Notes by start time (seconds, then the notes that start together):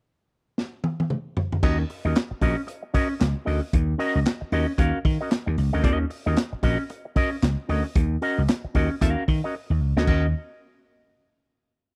0.58 snare
0.84 high tom
1.00 high tom
1.10 mid tom
1.37 floor tom
1.52 floor tom
1.63 D#2 C#4 F#4 A#4 D#5, kick, crash
1.79 muted clean electric guitar stroke
1.90 muted clean electric guitar stroke, open hi-hat
2.05 D#2 C#4 F#4 A#4 D#5
2.16 snare, clap, closed hi-hat
2.31 muted clean electric guitar stroke, muted slap bass stroke
2.41 A#1 C#4 F#4 A#4 D#5, kick, open hi-hat
2.57 muted clean electric guitar stroke
2.67 muted clean electric guitar stroke, closed hi-hat
2.83 muted clean electric guitar stroke
2.94 C#4 F#4 A#4 D#5, kick, open hi-hat
3.09 muted clean electric guitar stroke
3.20 C#2, muted clean electric guitar stroke, snare, clap, closed hi-hat
3.45 D2 C#4 F#4 A#4 D#5, open hi-hat
3.61 muted clean electric guitar stroke
3.73 D#2, kick, closed hi-hat
3.98 C#4 F#4 A#4 D#5, open hi-hat
4.15 C#2
4.25 snare, clap, closed hi-hat
4.41 muted clean electric guitar stroke, muted slap bass stroke
4.52 D#2 C#4 F#4 A#4 D#5, open hi-hat
4.68 muted clean electric guitar stroke
4.78 D#2 C#4 F#4 A#4 F5, kick, closed hi-hat
5.05 D#3, muted clean electric guitar stroke, kick, open hi-hat
5.21 C#4 F#4 A#4 D#5
5.31 snare, clap, closed hi-hat
5.46 D#2, muted clean electric guitar stroke
5.58 C#2, open hi-hat
5.73 D2 C#4 F#4 A#4 D#5
5.83 D#2 C#4 F#4 A#4 D#5, kick, closed hi-hat
6.00 muted clean electric guitar stroke
6.10 muted clean electric guitar stroke, open hi-hat
6.26 D#2 C#4 F#4 A#4 D#5
6.36 snare, clap, closed hi-hat
6.53 muted clean electric guitar stroke, muted slap bass stroke
6.63 A#1 C#4 F#4 A#4 D#5, kick, open hi-hat
6.79 muted clean electric guitar stroke
6.90 muted clean electric guitar stroke, closed hi-hat
7.05 muted clean electric guitar stroke
7.16 C#4 F#4 A#4 D#5, kick, open hi-hat
7.31 muted clean electric guitar stroke
7.42 C#2, muted clean electric guitar stroke, snare, clap, closed hi-hat
7.69 D2 C#4 F#4 A#4 D#5, open hi-hat
7.84 muted clean electric guitar stroke
7.95 D#2, kick, closed hi-hat
8.22 C#4 F#4 A#4 D#5, open hi-hat
8.38 C#2
8.48 snare, clap, closed hi-hat
8.65 muted clean electric guitar stroke, muted slap bass stroke
8.74 D#2 C#4 F#4 A#4 D#5, kick, open hi-hat
8.90 muted clean electric guitar stroke
9.01 D#2 C#4 F#4 A#4 F5, kick, closed hi-hat
9.28 D#3, muted clean electric guitar stroke, kick, open hi-hat
9.44 C#4 F#4 A#4 D#5
9.55 muted clean electric guitar stroke
9.70 D#2, muted clean electric guitar stroke
9.80 C#2
9.96 D2 C#4 F#4 A#4 D#5, snare
10.07 D#2 C#4 F#4 A#4 D#5, kick, crash